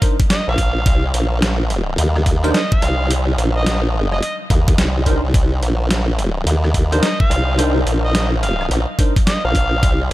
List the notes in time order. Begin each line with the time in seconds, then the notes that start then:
0.02 D4 D#4 A#4 C5, kick, closed hi-hat
0.20 kick, closed hi-hat
0.30 D#5, snare, closed hi-hat
0.48 A#1 F5
0.58 kick, closed hi-hat
0.86 C2, kick, closed hi-hat
1.14 A#1, closed hi-hat
1.42 snare, closed hi-hat
1.70 closed hi-hat
1.98 D#2, closed hi-hat
2.16 cross-stick
2.26 kick, closed hi-hat
2.44 D4 D#4 A#4 C5, closed hi-hat
2.54 D#5, snare, closed hi-hat
2.72 F5, kick
2.82 C2, cross-stick, closed hi-hat
3.11 closed hi-hat
3.38 A#1, closed hi-hat
3.57 D#5
3.66 D#5, snare, closed hi-hat
4.12 D#5, cross-stick
4.22 D#5, closed hi-hat
4.50 D#2, kick, closed hi-hat
4.68 kick, closed hi-hat
4.78 C2, snare, closed hi-hat
5.06 D4 D#4 A#4 C5, kick, closed hi-hat
5.24 C2
5.34 C2, kick, closed hi-hat
5.62 A#1, closed hi-hat
5.91 snare, closed hi-hat
6.19 closed hi-hat
6.46 D#2, closed hi-hat
6.64 cross-stick
6.74 kick, closed hi-hat
6.92 D4 D#4 A#4 C5, closed hi-hat
7.02 D#5, snare, closed hi-hat
7.20 F5, kick
7.30 C2, cross-stick, closed hi-hat
7.58 D4 D#4 A#4 C5, closed hi-hat
7.86 A#1, closed hi-hat
8.05 D#5
8.15 D#5, snare, closed hi-hat
8.43 F5, closed hi-hat
8.61 cross-stick
8.71 A#1, closed hi-hat
8.99 D4 D#4 A#4 C5, kick, closed hi-hat
9.16 kick, closed hi-hat
9.27 D#5, snare, closed hi-hat
9.45 A#1 F5
9.55 kick, closed hi-hat
9.83 C2, kick, closed hi-hat